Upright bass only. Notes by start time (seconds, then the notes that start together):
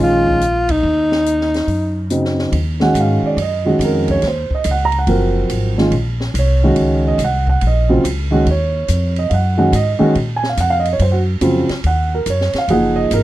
0.00 A#1
0.83 D#2
1.67 F#2
2.52 D#2
2.94 G#2
3.22 muted upright bass stroke
3.37 F#2
3.79 F2
4.23 D#2
4.50 muted upright bass stroke
4.65 C#2
5.07 F#1
5.50 G#1
5.91 A#1
6.34 C2
6.76 C#2
7.18 C2
7.62 A#1
8.04 C#2
8.46 D#2
8.89 F2
9.31 F#2
9.72 G#2
10.00 muted upright bass stroke
10.16 A#2
10.57 F2
10.99 F#2
11.41 F2
11.70 muted upright bass stroke
11.84 D#2
12.26 F#2
12.54 muted upright bass stroke
12.68 F#1
13.11 G#1